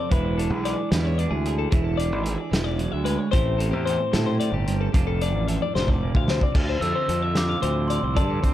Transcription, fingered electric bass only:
0.11 E1
0.50 B1
0.91 E2
1.31 D2
1.72 E1
2.12 G#1
2.52 E1
2.93 D2
3.33 A1
3.73 E2
4.14 A2
4.52 G1
4.94 F1
5.35 A1
5.76 F1
6.15 D2
6.55 D2
6.81 F2
7.08 F2
7.63 D2
8.03 C2
8.17 G2
8.44 D2

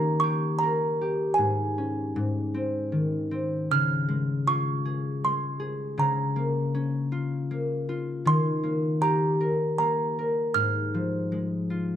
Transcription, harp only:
Already playing: D#3 A#3 C#4 F4 G4
0.23 G4
0.63 A#4
1.01 G4
1.38 G#2
1.78 C#4
2.16 G#2
2.54 C4
2.92 D#3
3.31 C4
3.71 C#3
4.08 G#3
4.47 F4
4.85 G#4
5.24 G#3
5.60 G#4
5.98 C#3
6.36 A#3
6.75 C#4
7.12 F4
7.51 A#3
7.89 F4
8.25 D#3
8.63 A#3
9.01 G4
9.41 A#4
9.79 A#3
10.19 A#4
10.54 G#2
10.94 F3
11.32 G#3
11.70 F4

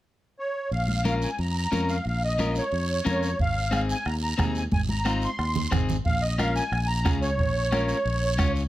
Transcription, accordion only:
0.39 C#5
0.73 F5
1.07 F5
1.23 G#5
1.40 A#5
1.57 A#5
1.90 F5
2.08 F5
2.24 D#5
2.58 C#5
3.07 C#5
3.41 F5
3.75 F5
3.91 G#5
4.07 A#5
4.23 A#5
4.57 G#5
4.73 G#5
4.90 A#5
5.24 C6
6.06 F5
6.22 D#5
6.39 F5
6.55 G#5
6.87 A#5
7.22 C#5

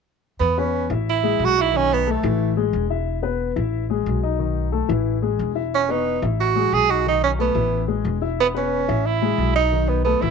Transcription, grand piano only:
0.58 B3 B4
0.91 E4 E5
1.23 G#3 G#4
1.57 D#4 D#5
1.73 D#3 D#4
2.07 A3 A4
2.24 E3 E4
2.57 G#3 G#4
2.90 E4 E5
3.22 B3 B4
3.56 E4 E5
3.90 G#3 G#4
4.23 D#4 D#5
4.39 D#3 D#4
4.72 A3 A4
4.88 E3 E4
5.22 G#3 G#4
5.55 E4 E5
5.89 B3 B4
6.22 E4 E5
6.55 G#3 G#4
6.89 D#4 D#5
7.06 D#3 D#4
7.39 A3 A4
7.55 E3 E4
7.88 G#3 G#4
8.22 E4 E5
8.54 B3 B4
8.88 E4 E5
9.22 G#3 G#4
9.54 D#4 D#5
9.72 D#3 D#4
10.06 A3 A4
10.22 E3 E4

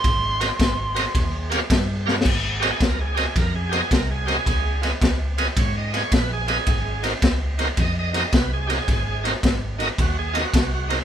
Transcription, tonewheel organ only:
0.40 F#4 A#4 C5 D#5
0.95 F#4 A#4 C5 D#5
1.50 G4 A#4 C#5 F5
2.06 G4 A#4 C#5 F5
2.60 F#4 G4 A#4 C5 D#5
2.64 G#4
2.83 A#4
3.01 G#4
3.15 F#4 G4 A#4 C5 D#5
3.19 G#4
3.37 A#4
3.56 G#4
3.69 F#4 G4 A#4 C5 D#5
3.74 G#4
3.93 A#4
4.11 G#4
4.26 F#4 G4 G#4 A#4 C5 D#5
4.82 F4 G#4 B4 D#5
5.38 F4 G#4 B4 D#5
5.59 C#5
5.77 D#5
5.93 F4 G#4 B4 D#5
5.97 C#5
6.15 B4
6.33 G#4
6.48 F4 G4 G#4 B4 D#5
6.52 G#4
7.03 D#4 F#4 A#4 C5
7.58 D#4 F#4 A#4 C5
7.79 D#5
7.99 D#5
8.13 D#4 F#4 A#4 C5 D#5
8.35 B4
8.53 G#4
8.67 D#4 F#4 G4 A#4 C5
8.72 G#4
9.24 D#4 F#4 A#4 C5
9.79 D#4 F#4 A#4 D#5
10.01 F#4
10.19 G#4
10.33 D#4 F4 F#4 A#4 D#5
10.38 F#4
10.74 F#4
10.89 D#4 F#4 A#4 C5

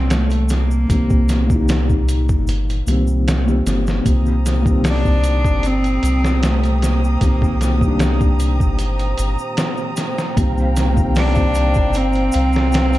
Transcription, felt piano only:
Already playing: A#2 D#3 G3 C4
0.88 A#2 D#3 G3
0.93 C4
1.47 A#2 D#3
1.52 G3 D#4
2.87 A#2 D#3 G3
2.91 C4
3.46 A#2 D#3 G3
3.50 C4
4.04 A#2 D#3 G3
4.09 C4
4.61 A#2 D#3
4.67 G3 C4
7.20 A#2 D#3 G3
7.25 C4
7.78 A#2 D#3
7.84 G3 D4
10.36 A#2 D#3 G3 C4
10.93 A#2 D#3
10.99 G3 C4

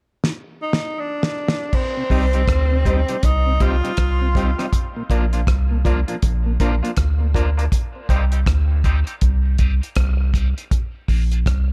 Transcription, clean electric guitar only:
2.10 G3 C4 D#4 G4
2.34 G3 C4 D#4 G4
2.86 G3 C4 D#4 G4
3.09 G3 C4 D#4 G4
3.61 G3 C4 D#4 G4
3.84 G3 C4 D#4 G4
4.35 G3 C4 D#4 G4
4.58 G3 C4 D#4 G4
5.10 F3 A#3 D4 F4
5.33 F3 A#3 D4 F4
5.85 F3 A#3 D4 F4
6.08 F3 A#3 D4 F4
6.60 F3 A#3 D4 F4
6.83 F3 A#3 D4 F4
7.34 F3 A#3 D4 F4
7.57 F3 A#3 D4 F4
8.09 G3 C4 D#4 G4
8.32 G3 C4 D#4 G4
8.84 G3 C4 D#4 G4
9.07 G3 C4 D#4 G4
9.59 G3 C4 D#4 G4
9.81 G3 C4 D#4 G4
10.33 G3 C4 D#4 G4
10.57 G3 C4 D#4 G4
11.08 F3 A#3 D4 F4
11.32 F3 A#3 D4 F4

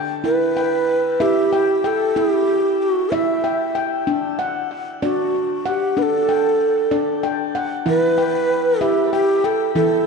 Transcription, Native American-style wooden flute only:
0.26 B4
1.22 G4
1.86 A4
2.17 G4
2.82 F#4
3.14 E5
5.03 F#4
5.68 G4
5.98 B4
6.02 A4
7.89 B4
8.82 G4
9.13 G4
9.45 A4
9.76 A4

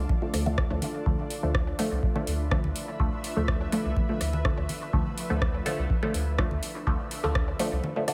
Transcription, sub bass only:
0.34 D2
0.71 D2
1.06 D2
1.43 D2
1.91 C2
2.27 D2
2.64 D2
3.00 D2
3.37 D2
3.85 C2
4.21 D2
4.58 D2
4.93 D2
5.30 D2
5.79 C2
6.14 D2
6.51 D2
6.87 D2
7.24 D2
7.72 C2

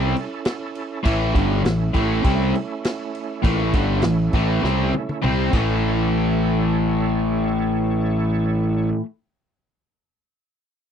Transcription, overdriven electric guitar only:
Already playing: C3 G3 C4
1.03 A2 E3 A3
1.34 G2 D3 G3
1.64 A2 E3
1.93 A2 E3 A3
2.23 C3 G3 C4
3.42 A2 E3 A3
3.74 G2 D3 G3
4.04 A2 E3
4.34 A2 E3 A3
4.63 C3 G3 C4
5.22 C3 G3 C4
5.51 A2 E3
5.55 A3

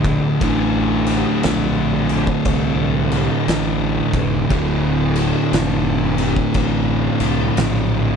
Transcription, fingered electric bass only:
Already playing: A#1
0.41 A1
1.44 A#1
2.45 C2
3.48 A1
4.13 F1
4.50 D1
5.52 F1
6.55 A1
7.20 C2
7.57 A#1

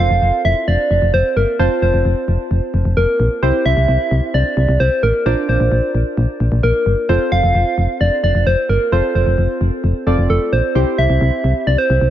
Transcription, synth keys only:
Already playing: C4 F4 A4 C5
1.59 C4 F4 C5 A5
3.43 C4 E4 G4 C5
5.26 D4 F4 A#4 D5
7.09 C4 F4 A4 C5
8.92 C4 F4 A4 C5
10.07 C4 F4 A4 D5
10.75 C4 E4 G4 C5

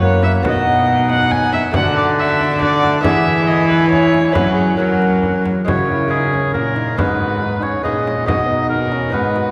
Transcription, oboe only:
0.02 F#5
0.45 F#5
1.74 F#5
2.62 F#5
3.05 G#5
4.35 F#5
4.78 F#5
5.67 C#5
6.10 G#4
6.54 A#4
6.98 B4
7.63 C#5
7.84 D#5
8.27 D#5
8.69 A#4
9.14 B4

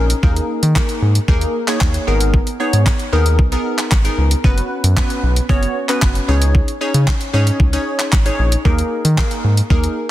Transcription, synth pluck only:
Already playing: C#4 D#4 G#4 A#4
0.23 A#3 D#4 G#4 A#4
0.75 A#3 D#4 G#4 A#4
1.28 A#3 D#4 G#4 A#4
1.68 A#3 D#4 G#4 C#5
2.07 B3 D#4 G#4 A#4
2.60 B3 D#4 G#4 C#5
3.12 B3 D#4 G#4 A#4
3.52 B3 D#4 G#4 A#4
4.04 B3 D#4 G#4 A#4
4.44 B3 C#4 F#4 B4
4.97 B3 C#4 F#4 B4
5.49 B3 C#4 F#4 C#5
5.89 B3 C#4 F#4 B4
6.28 C#4 D#4 G#4 C#5
6.81 C#4 D#4 G#4 C#5
7.33 C#4 D#4 G#4 C#5
7.73 C#4 D#4 G#4 C#5
8.25 C#4 D#4 G#4 C#5
8.65 A#3 D#4 G#4 A#4
9.18 A#3 D#4 G#4 A#4
9.70 A#3 D#4 G#4 A#4

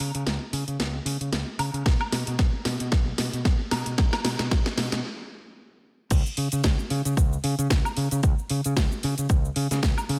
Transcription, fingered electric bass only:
0.15 C#3
0.26 C#2
0.53 C#3
0.68 C#3
0.79 C#2
1.05 C#3
1.21 C#3
1.32 C#2
1.59 C#3
1.74 C#3
1.86 B1
2.12 B2
2.27 B2
2.39 B1
2.65 B2
2.80 B2
2.92 B1
3.19 B2
3.33 B2
3.45 B1
3.72 B2
3.86 B2
3.98 B1
4.25 B2
4.39 B2
4.51 B1
4.78 B2
4.92 B2
6.11 C#2
6.38 C#3
6.53 C#3
6.64 C#2
6.90 C#3
7.05 C#3
7.17 C#2
7.44 C#3
7.59 C#3
7.70 C#2
7.97 C#3
8.12 C#3
8.23 C#2
8.50 C#3
8.66 C#3
8.76 C#2
9.04 C#3
9.18 C#3
9.30 C#2
9.56 C#3
9.71 C#3
9.83 C#2
10.09 C#3

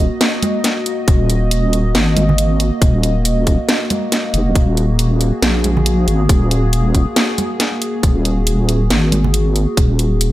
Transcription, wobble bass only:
Already playing: D#1
1.08 D#1
1.95 G#1
2.82 D#1
4.34 F1
4.47 D#1
4.56 D#1
5.42 A#1
6.08 G#1
6.29 D#1
8.03 D#1
8.90 G#1
9.77 D#1

